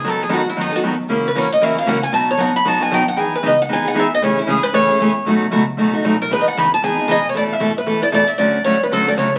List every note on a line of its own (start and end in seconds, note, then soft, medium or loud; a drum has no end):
0.03 0.29 D#2 medium
0.03 0.22 D#3 medium
0.03 0.22 F#3 medium
0.03 0.23 B3 medium
0.03 0.23 D#4 medium
0.03 0.23 A4 medium
0.08 0.21 A4 medium
0.23 0.32 G#4 medium
0.29 0.55 E2 medium
0.29 0.40 D#3 medium
0.29 0.40 F#3 medium
0.29 0.40 B3 medium
0.29 0.40 D#4 medium
0.29 0.40 A4 loud
0.34 0.46 F#4 medium
0.50 0.58 E4 medium
0.56 0.81 F#2 medium
0.56 0.71 D#3 medium
0.56 0.71 F#3 medium
0.56 0.71 B3 medium
0.56 0.71 D#4 medium
0.56 0.71 A4 medium
0.61 0.73 D#4 medium
0.72 0.83 B3 soft
0.72 0.82 D#4 medium
0.72 0.81 F#4 medium
0.72 0.82 A4 medium
0.82 1.08 D#2 medium
0.82 0.93 D#3 medium
0.82 0.93 F#3 medium
0.82 0.93 B3 medium
0.82 0.93 D#4 medium
0.82 0.93 A4 loud
1.08 1.34 C#2 medium
1.08 1.27 C#3 medium
1.08 1.27 E3 medium
1.08 1.27 A#3 medium
1.08 1.27 C#4 medium
1.08 1.28 F#4 medium
1.28 1.36 B4 medium
1.35 1.60 E2 medium
1.35 1.45 C#3 medium
1.35 1.45 E3 loud
1.35 1.46 A#3 medium
1.35 1.46 C#4 medium
1.35 1.46 F#4 loud
1.35 1.51 C#5 medium
1.52 1.63 D#5 medium
1.60 1.86 D#2 medium
1.60 1.75 C#3 medium
1.60 1.75 E3 medium
1.60 1.76 A#3 medium
1.60 1.75 C#4 medium
1.60 1.75 F#4 medium
1.60 1.77 E5 medium
1.76 1.86 A#3 soft
1.76 1.86 C#4 medium
1.76 1.86 F#4 medium
1.76 1.88 F5 medium
1.86 2.11 C#2 loud
1.86 1.97 C#3 medium
1.86 1.97 E3 medium
1.86 1.97 A#3 medium
1.86 1.97 C#4 medium
1.86 1.97 F#4 medium
1.86 2.02 F#5 medium
2.03 2.13 G#5 medium
2.12 2.38 B1 medium
2.12 2.31 B2 medium
2.12 2.31 F#3 medium
2.12 2.31 B3 medium
2.12 2.31 D#4 medium
2.12 2.31 F#4 medium
2.12 2.28 A5 loud
2.31 2.40 C#5 medium
2.37 2.64 A1 medium
2.37 2.49 B2 medium
2.37 2.49 F#3 medium
2.37 2.49 B3 medium
2.37 2.49 D#4 medium
2.37 2.49 F#4 medium
2.37 2.54 F#5 medium
2.56 2.68 B5 loud
2.65 2.90 B1 medium
2.65 2.79 B2 medium
2.65 2.80 F#3 medium
2.65 2.80 B3 medium
2.65 2.79 D#4 medium
2.65 2.78 F#4 medium
2.65 2.81 A5 medium
2.79 2.90 B3 soft
2.79 2.91 D#4 soft
2.79 2.90 F#4 medium
2.79 2.92 G#5 medium
2.91 3.16 D#2 medium
2.91 3.01 B2 medium
2.91 3.02 F#3 medium
2.91 3.01 B3 medium
2.91 3.02 D#4 medium
2.91 3.02 F#4 loud
2.91 3.07 G5 medium
3.08 3.19 F#5 medium
3.16 3.42 E2 medium
3.16 3.35 E3 medium
3.16 3.35 B3 medium
3.16 3.35 D#4 medium
3.16 3.35 G#4 medium
3.16 3.33 G#5 loud
3.35 3.45 B4 medium
3.43 3.69 C#2 medium
3.43 3.53 E3 medium
3.43 3.53 B3 medium
3.43 3.54 D#4 medium
3.43 3.54 G#4 medium
3.43 3.60 D#5 medium
3.62 3.71 F#5 medium
3.69 3.95 D#2 medium
3.69 3.84 E3 medium
3.69 3.84 B3 medium
3.69 3.84 D#4 medium
3.69 3.83 G#4 medium
3.69 3.86 G#5 loud
3.84 3.94 B3 medium
3.84 3.94 D#4 medium
3.84 3.94 G#4 medium
3.84 3.97 F#5 medium
3.94 4.20 E2 medium
3.94 4.05 E3 medium
3.94 4.06 B3 medium
3.94 4.06 D#4 medium
3.94 4.06 G#4 loud
3.99 4.12 E5 medium
4.15 4.23 D#5 medium
4.20 4.46 A2 medium
4.20 4.40 C#3 medium
4.20 4.40 E3 medium
4.20 4.40 A3 medium
4.20 4.40 C#4 medium
4.20 4.40 G#4 medium
4.20 4.37 C#5 medium
4.39 4.48 E4 soft
4.46 4.72 G#2 medium
4.46 4.58 C#3 loud
4.46 4.58 E3 medium
4.46 4.58 A3 medium
4.46 4.58 C#4 loud
4.46 4.58 G#4 medium
4.46 4.63 G#4 medium
4.63 4.74 B4 medium
4.73 4.98 F#2 medium
4.73 4.88 C#3 medium
4.73 4.88 E3 medium
4.73 4.88 A3 medium
4.73 4.88 C#4 medium
4.73 4.87 G#4 medium
4.73 5.52 C#5 medium
4.88 5.00 A3 medium
4.88 4.99 C#4 medium
4.88 4.99 G#4 medium
4.99 5.24 E2 medium
4.99 5.10 C#3 loud
4.99 5.11 E3 medium
4.99 5.11 A3 loud
4.99 5.11 C#4 medium
4.99 5.11 G#4 loud
5.25 5.50 B1 medium
5.25 5.44 B2 medium
5.25 5.44 F#3 medium
5.25 5.45 A3 medium
5.25 5.45 D#4 medium
5.25 5.45 F#4 medium
5.51 5.76 C#2 medium
5.51 5.62 B2 medium
5.51 5.62 F#3 loud
5.51 5.62 A3 medium
5.51 5.62 D#4 medium
5.51 5.62 F#4 loud
5.77 5.91 D#2 medium
5.77 5.92 B2 medium
5.77 5.92 F#3 medium
5.77 5.92 A3 medium
5.77 5.93 D#4 medium
5.77 5.92 F#4 medium
5.92 6.03 A3 medium
5.92 6.04 D#4 medium
5.92 6.03 F#4 medium
5.92 muted upright bass stroke soft
6.03 6.29 B1 loud
6.03 6.14 B2 loud
6.03 6.15 F#3 medium
6.03 6.14 A3 loud
6.03 6.15 D#4 medium
6.03 6.15 F#4 loud
6.22 6.31 A#4 medium
6.30 6.55 E1 medium
6.30 6.49 E3 medium
6.30 6.49 B3 medium
6.30 6.49 D#4 medium
6.30 6.49 G#4 medium
6.30 6.40 B4 medium
6.41 6.47 D#5 medium
6.48 6.56 F#5 medium
6.56 6.81 F#1 loud
6.56 6.67 E3 loud
6.56 6.67 B3 medium
6.56 6.67 D#4 loud
6.56 6.67 G#4 medium
6.56 6.72 B5 medium
6.74 6.83 A5 medium
6.82 7.07 G#1 medium
6.82 6.97 E3 medium
6.82 6.97 B3 medium
6.82 6.97 D#4 medium
6.82 6.97 G#4 medium
6.82 7.26 G#5 medium
6.98 7.07 B3 medium
6.98 7.07 D#4 medium
6.98 7.07 G#4 medium
7.08 7.34 B1 loud
7.08 7.18 E3 medium
7.08 7.18 B3 medium
7.08 7.18 D#4 loud
7.08 7.19 G#4 medium
7.08 7.26 D#5 medium
7.29 7.32 C#5 medium
7.34 7.59 A1 medium
7.34 7.52 B2 medium
7.34 7.53 E3 medium
7.34 7.53 A3 medium
7.34 7.53 E4 medium
7.34 7.53 A4 medium
7.34 7.42 D5 medium
7.52 7.77 E5 medium
7.59 7.86 A2 medium
7.59 7.70 B2 medium
7.59 7.70 E3 medium
7.59 7.71 A3 medium
7.59 7.71 E4 medium
7.59 7.71 A4 medium
7.78 8.01 B4 medium
7.86 8.12 F#2 medium
7.86 8.01 B2 medium
7.86 8.01 E3 medium
7.86 8.01 A3 medium
7.86 8.01 E4 medium
7.86 8.00 A4 medium
8.01 8.11 A3 soft
8.01 8.11 E4 medium
8.01 8.11 A4 medium
8.01 8.07 D5 medium
8.12 8.38 G#2 medium
8.12 8.23 B2 medium
8.12 8.23 E3 medium
8.12 8.23 A3 medium
8.12 8.23 E4 medium
8.12 8.23 A4 medium
8.12 8.29 D5 medium
8.27 8.39 E5 medium
8.38 8.64 A2 medium
8.38 8.57 D3 medium
8.38 8.57 F#3 medium
8.38 8.57 A3 medium
8.38 8.58 C#4 medium
8.38 8.57 F#4 medium
8.38 8.63 D5 medium
8.64 8.90 F#2 medium
8.64 8.75 D3 medium
8.64 8.76 F#3 medium
8.64 8.76 A3 medium
8.64 8.76 C#4 medium
8.64 8.76 F#4 medium
8.64 8.83 C#5 medium
8.83 8.87 B4 medium
8.91 9.16 D2 medium
8.91 9.06 D3 medium
8.91 9.06 F#3 medium
8.91 9.06 A3 medium
8.91 9.05 C#4 medium
8.91 9.04 F#4 medium
8.91 9.08 A4 medium
9.05 9.16 A3 soft
9.05 9.17 C#4 medium
9.05 9.16 F#4 medium
9.05 9.13 D5 medium
9.17 9.39 C#2 medium
9.17 9.27 D3 medium
9.17 9.27 F#3 medium
9.17 9.28 A3 medium
9.17 9.28 C#4 medium
9.17 9.28 F#4 medium
9.17 9.35 C#5 medium
9.36 9.39 B4 medium